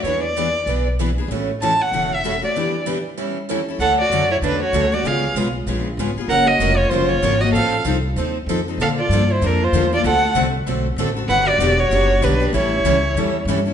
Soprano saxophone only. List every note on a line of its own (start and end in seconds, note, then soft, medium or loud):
3.81 3.98 A4 medium
4.01 4.29 F#4 medium
4.31 4.37 E4 medium
4.43 4.60 D4 medium
4.62 4.94 F#4 medium
4.94 5.07 F#4 medium
5.06 5.36 G#4 medium
6.29 6.48 A#4 medium
6.46 6.78 F#4 medium
6.76 6.89 F4 medium
6.89 7.07 F4 medium
7.07 7.40 F4 medium
7.39 7.52 F#4 medium
7.52 7.82 A4 medium
8.81 8.89 A4 medium
9.00 9.32 F4 medium
9.31 9.46 E4 medium
9.44 9.65 D4 medium
9.63 9.93 F4 medium
9.94 10.04 F4 medium
10.07 10.34 A4 medium
11.29 11.48 B4 medium
11.46 11.78 F#4 medium
11.78 12.24 F#4 medium
12.22 12.53 D4 medium
12.54 13.43 E4 medium